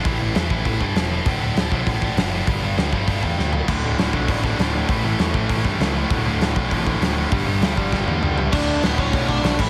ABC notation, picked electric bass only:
X:1
M:4/4
L:1/8
Q:1/4=198
K:Amix
V:1 name="Picked electric bass" clef=bass
A,,, A,,, E,, A,,, A,,, G,, E,,,2 | D,,, D,,, D,,, B,,, A,,,2 F,,,2 | G,,, G,,, D,, G,,, G,,, E,, D,,2 | D,,, D,,, D,,, B,,, A,,,2 D,,,2 |
A,,, A,,, E,, A,,, A,,, G,, C,,2 | D,,, D,,, D,,, B,,, A,,,2 D,,,2 | G,,, G,,, D,, G,,, G,,, E,, C,,2 | D,,,2 D,,, D,,, B,,,2 B,,, A,,, |]